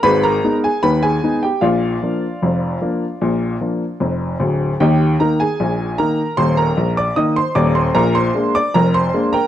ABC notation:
X:1
M:2/4
L:1/16
Q:1/4=76
K:Eb
V:1 name="Upright piano"
[_c_c'] [Bb]2 [Aa] [cc'] [Aa]2 [Gg] | [Fdf]8- | [Fdf]4 z4 | [Geg]2 [Bb] [Aa]3 [Bb]2 |
[cc'] [Bb]2 [dd'] [ee'] [cc'] [dd'] [cc'] | [Bb] [cc']2 [dd'] [Bb] [cc']2 [Bgb] |]
V:2 name="Upright piano" clef=bass
[A,,,A,,]2 [A,_CE]2 [E,,E,]2 [A,CE]2 | [B,,,B,,]2 [F,B,D]2 [F,,,F,,]2 [F,B,D]2 | [B,,,B,,]2 [F,B,D]2 [F,,,F,,]2 [D,,,D,,]2 | [E,,E,]2 [E,B,E]2 [B,,,B,,]2 [E,B,E]2 |
[E,,,E,,]2 B,,,2 [E,B,E]2 [E,,,E,,]2 | [B,,,B,,]2 [A,B,D]2 [F,,,F,,]2 [A,B,D]2 |]